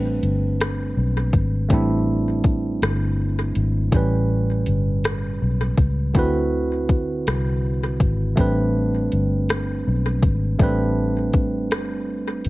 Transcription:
Already playing: fingered electric bass A1, tine electric piano G3 A3 C4 D4 B4
0.23 fingered electric bass G1, closed hi-hat
0.60 cross-stick, closed hi-hat
0.97 fingered electric bass B1
1.33 fingered electric bass G#1, kick, closed hi-hat
1.69 fingered electric bass A1, tine electric piano G3 A3 C4, kick, closed hi-hat
1.73 tine electric piano D4 E4
2.44 kick, closed hi-hat
2.82 fingered electric bass G1, cross-stick, closed hi-hat
3.55 fingered electric bass G#1, closed hi-hat
3.91 fingered electric bass A1, tine electric piano A2 G3 C#4, kick, closed hi-hat
3.96 tine electric piano B4
4.66 fingered electric bass G1, closed hi-hat
5.04 cross-stick, closed hi-hat
5.42 fingered electric bass B1
5.77 fingered electric bass C#2, kick, closed hi-hat
6.13 fingered electric bass D2, tine electric piano D3 C4 E4 F#4, kick, closed hi-hat
6.19 tine electric piano B4
6.89 kick, closed hi-hat
7.27 fingered electric bass C2, cross-stick, closed hi-hat
8.00 fingered electric bass G#1, kick, closed hi-hat
8.36 fingered electric bass A1, tine electric piano G3 A3 C4 D4, kick, closed hi-hat
8.41 tine electric piano B4
9.12 fingered electric bass G1, closed hi-hat
9.49 cross-stick, closed hi-hat
9.87 fingered electric bass B1
10.22 fingered electric bass G#1, kick, closed hi-hat
10.59 fingered electric bass A1, tine electric piano G3 A3 C4 D4, kick, closed hi-hat
10.63 tine electric piano B4
11.33 kick, closed hi-hat
11.71 fingered electric bass G1, cross-stick, closed hi-hat
12.45 fingered electric bass G#1, closed hi-hat

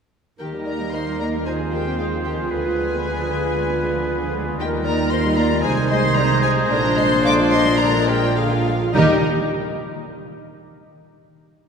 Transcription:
0.39 double bass section D#2, cello section D#3, viola section D#3 D#4, french horn section A#3 D#4, clarinet G4, violin section G4 G5, flute A#4, oboe A#4, trumpet section A#4
0.53 viola section G3
0.66 viola section A#3, violin section A#4 A#5, flute D5
0.79 viola section G3
0.92 viola section D#3, violin section C5 C6, flute D#5
1.05 viola section G3
1.19 viola section A#3, violin section A#4 A#5, flute D5
1.33 viola section G3
1.46 viola section D#3 F4, french horn section C4 F4, clarinet F4, trumpet section G#4, violin section G#4 G#5, flute C5, oboe C5
1.60 viola section F3
1.72 viola section G#3, violin section G4 G5, flute A#4
1.86 viola section C4
1.98 viola section G#3, violin section F4 F5, flute G#4
2.12 viola section F3
2.25 viola section D#3, violin section G4 G5, flute A#4
2.39 viola section F3
2.51 double bass section D2, cello section D3, viola section D3, french horn section B3, violin section G#4 G#5, flute B4, oboe B4
2.65 viola section F3
2.78 viola section G#3
2.90 viola section B3
3.03 viola section G#3
3.17 viola section F3
3.30 viola section D3
3.42 viola section F3
3.55 viola section G#3
3.68 viola section B3
3.81 viola section G#3
3.95 viola section F3
4.07 viola section D3
4.20 viola section F3
4.33 viola section G#3
4.47 viola section B3
4.58 double bass section D#2, cello section D#3, viola section D#3 D#4, french horn section A#3 D#4, violin section G4 G5, oboe A#4, flute A#4, trumpet section A#4
4.72 viola section G3
4.85 viola section A#3, violin section A#4 A#5, flute D5
4.99 viola section G3
5.11 viola section D#3, violin section C5 C6, flute D#5
5.25 viola section G3
5.37 viola section A#3, violin section A#4 A#5, flute D5
5.51 viola section G3
5.63 double bass section C2, viola section C3, cello section C3, french horn section G#3, clarinet D#4, oboe G#4, violin section G#4 G#5, flute C5, trumpet section C5
5.77 viola section D#3
5.90 viola section G#3, violin section C5 C6, flute D#5
6.03 viola section D#3
6.15 viola section C3, violin section A#4 A#5, flute D5
6.30 viola section D#3
6.43 viola section G#3, violin section G#4 G#5, flute C5
6.56 viola section D#3
6.70 double bass section A#1, cello section A#2, viola section D3 D4, clarinet D4, french horn section D4, violin section A#4 A#5, flute D5
6.84 viola section F3
6.97 viola section G#3, violin section C5 C6, flute D#5
7.10 viola section F3
7.24 viola section D3, violin section D5 D6, flute F5
7.37 viola section F3
7.51 viola section G#3, violin section C5 C6, flute D#5
7.66 viola section F3
7.79 viola section D3, violin section A#4 A#5, flute D5
7.94 viola section F3
8.08 viola section G#3, violin section G4 G5, flute A#4
8.23 viola section F3
8.36 viola section D3, violin section F4 F5, flute G#4
8.51 viola section F3
8.66 viola section G#3
8.80 viola section F3
8.94 double bass section D#2, cello section D#3, viola section G3 D#4, french horn section G3 D#4, violin section D#4 D#5, clarinet D#4, oboe G4, flute G4, trumpet section A#4

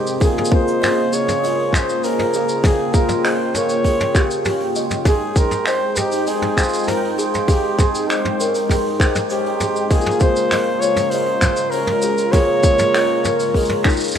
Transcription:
Already playing: analog synth pad C3 G#3 D#4 G5, hammered dulcimer G#3 C4 D#4 G4, flugelhorn G4, kalimba G#4
0.07 shaker
0.20 hammered dulcimer A#2 G#4, analog synth pad C#3 A#3 F4 G#4, kalimba G#4, flugelhorn G#4, kick, open hi-hat, shaker
0.38 mid tom
0.45 shaker
0.51 hammered dulcimer G#3, kalimba G#4, flugelhorn C5, kick
0.68 shaker
0.82 hammered dulcimer G#4, kalimba D#5, finger snap, mid tom, open hi-hat, shaker
1.13 hammered dulcimer C#4, kalimba G#4, flugelhorn C#5, shaker
1.28 mid tom, open hi-hat, shaker
1.44 hammered dulcimer G#3, kalimba D#5, open hi-hat, shaker
1.59 open hi-hat
1.73 hammered dulcimer G#4, flugelhorn C5, kalimba C5, finger snap, kick, mid tom, shaker
1.89 shaker
2.03 hammered dulcimer C#4, flugelhorn A#4, kalimba C5, open hi-hat, shaker
2.19 mid tom, open hi-hat
2.34 hammered dulcimer G#3, kalimba G#4, shaker
2.49 shaker
2.63 hammered dulcimer A#2 G#4, flugelhorn G#4, kalimba G#4, analog synth pad G5, kick, mid tom, open hi-hat, shaker
2.94 hammered dulcimer G#3, kalimba G#4, flugelhorn A#4, kick, shaker
3.09 mid tom, shaker
3.25 hammered dulcimer G#4, flugelhorn C5, kalimba D#5, finger snap, open hi-hat, shaker
3.54 hammered dulcimer C#4, kalimba A#4, flugelhorn C#5, mid tom, shaker
3.69 shaker
3.84 hammered dulcimer G#3, kalimba G#4, kick, open hi-hat, shaker
4.00 mid tom, open hi-hat
4.15 kalimba G4, hammered dulcimer G#4, finger snap, kick, shaker
4.31 shaker
4.45 hammered dulcimer C#4, kalimba G4, mid tom, open hi-hat, shaker
4.60 open hi-hat
4.76 hammered dulcimer G#3, kalimba D#5, shaker
4.91 mid tom, shaker
5.05 analog synth pad G#3 D#4, hammered dulcimer G#3, kalimba G#4, flugelhorn G#4, kick, mid tom, open hi-hat, shaker
5.36 hammered dulcimer C4, kalimba G#4, flugelhorn A#4, kick, shaker
5.51 mid tom, shaker
5.66 flugelhorn C5, kalimba D#5, finger snap, open hi-hat, shaker
5.96 hammered dulcimer D#4, flugelhorn G4, kalimba C5, mid tom, shaker
6.11 open hi-hat, shaker
6.27 hammered dulcimer C4, flugelhorn G#4, kalimba D#5, open hi-hat, shaker
6.42 mid tom, open hi-hat
6.57 hammered dulcimer F4, kalimba C5, finger snap, kick, shaker
6.63 shaker
6.69 shaker
6.73 shaker
6.83 shaker
6.88 hammered dulcimer D#4, flugelhorn A#4, kalimba C5, mid tom, open hi-hat, shaker
7.04 open hi-hat
7.11 flugelhorn A#4
7.18 hammered dulcimer C4, kalimba G#4, flugelhorn G#4, shaker
7.34 mid tom, shaker
7.48 hammered dulcimer G#3, flugelhorn G4, kalimba G#4, kick, open hi-hat, shaker
7.79 hammered dulcimer C4, kalimba G#4, flugelhorn G#4, kick, mid tom, shaker
7.95 shaker
8.09 hammered dulcimer G4, flugelhorn C5, kalimba D#5, finger snap, open hi-hat, shaker
8.25 mid tom
8.40 hammered dulcimer C#4, kalimba A#4, shaker
8.55 hammered dulcimer D#4, open hi-hat, shaker
8.69 hammered dulcimer C4, kalimba G#4, kick, mid tom, open hi-hat, shaker
8.86 open hi-hat
8.90 open hi-hat
8.93 open hi-hat
8.98 hammered dulcimer G4, kalimba C5, finger snap, kick, open hi-hat, shaker
9.05 open hi-hat
9.09 open hi-hat
9.12 mid tom, open hi-hat, shaker
9.30 hammered dulcimer C#4, flugelhorn G4, kalimba C5, open hi-hat, shaker
9.46 hammered dulcimer D#4, open hi-hat
9.60 hammered dulcimer C4, kalimba G#4, mid tom, shaker
9.76 shaker
9.90 hammered dulcimer A#2 G#4, analog synth pad C#3 F4 A#4, flugelhorn G#4, kalimba G#4, kick, open hi-hat, shaker
10.01 shaker
10.06 mid tom
10.11 shaker
10.20 hammered dulcimer G#3, kalimba G#4, flugelhorn C5, kick, shaker
10.36 shaker
10.51 hammered dulcimer G#4, kalimba D#5, finger snap, mid tom, open hi-hat, shaker
10.80 hammered dulcimer C#4, flugelhorn C#5, kalimba C#5, shaker
10.96 mid tom, open hi-hat, shaker
11.10 hammered dulcimer G#3, flugelhorn C5, open hi-hat, shaker
11.14 kalimba D#5
11.26 open hi-hat
11.41 hammered dulcimer G#4, kalimba C5, finger snap, kick, mid tom, shaker
11.56 shaker
11.71 hammered dulcimer C#4, flugelhorn A#4, kalimba C5, open hi-hat, shaker
11.87 mid tom, open hi-hat
12.02 hammered dulcimer G#3, kalimba G#4, shaker
12.18 shaker
12.32 hammered dulcimer A#2 G#4, kalimba G#4, flugelhorn C#5, kick, mid tom, open hi-hat, shaker
12.63 hammered dulcimer G#3, kalimba G#4, kick, shaker
12.79 mid tom, open hi-hat, shaker
12.94 hammered dulcimer G#4, kalimba D#5, finger snap, open hi-hat, shaker
13.25 hammered dulcimer C#4, kalimba A#4, mid tom, shaker
13.39 open hi-hat, shaker
13.54 hammered dulcimer G#3, kalimba G#4, kick, open hi-hat, shaker
13.60 shaker
13.65 shaker
13.69 mid tom, open hi-hat
13.84 kalimba D#4, finger snap, kick, shaker
13.89 shaker
13.93 shaker
13.97 shaker
14.00 shaker
14.04 shaker
14.08 shaker
14.11 mid tom, open hi-hat, shaker
14.15 flugelhorn G4, shaker

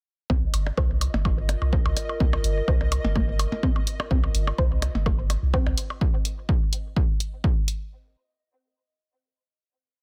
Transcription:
0.30 sub bass C2, synth arpeggio sound C4, ambient pad F4, synth texture D#5, kick, percussion blips
0.54 sub bass G1, closed hi-hat, percussion blips
0.63 ambient pad A#4 D#5, percussion blips
0.77 sub bass C2, synth arpeggio sound C5, kick, percussion blips
1.01 closed hi-hat, percussion blips
1.14 sub bass G1, percussion blips
1.25 synth arpeggio sound A#3, kick, percussion blips
1.49 closed hi-hat, percussion blips
1.62 sub bass C2, percussion blips
1.73 synth arpeggio sound C4, kick
1.85 sub bass C2, percussion blips
1.97 closed hi-hat, percussion blips
2.09 percussion blips
2.20 sub bass C2, synth arpeggio sound C4, kick
2.33 percussion blips
2.44 sub bass G1, closed hi-hat
2.68 sub bass C2, synth arpeggio sound C5, kick, percussion blips
2.81 percussion blips
2.92 closed hi-hat, percussion blips
3.05 sub bass G1, percussion blips
3.16 synth arpeggio sound A#3, kick, percussion blips
3.39 closed hi-hat, percussion blips
3.52 percussion blips
3.63 synth arpeggio sound C4, kick, percussion blips
3.76 percussion blips
3.87 closed hi-hat
4.00 percussion blips
4.11 sub bass C2, synth arpeggio sound C4, kick
4.24 percussion blips
4.35 sub bass G1, closed hi-hat
4.47 percussion blips
4.58 sub bass C2, synth arpeggio sound C5, kick
4.82 closed hi-hat, percussion blips
4.95 sub bass G1, percussion blips
5.06 synth arpeggio sound A#3, kick, percussion blips
5.30 closed hi-hat, percussion blips
5.43 sub bass C2
5.54 synth arpeggio sound C4, kick, percussion blips
5.66 sub bass C2, percussion blips
5.78 closed hi-hat
5.90 percussion blips
6.01 kick
6.25 closed hi-hat
6.49 kick
6.73 closed hi-hat
6.96 kick
7.20 closed hi-hat
7.44 kick
7.68 closed hi-hat

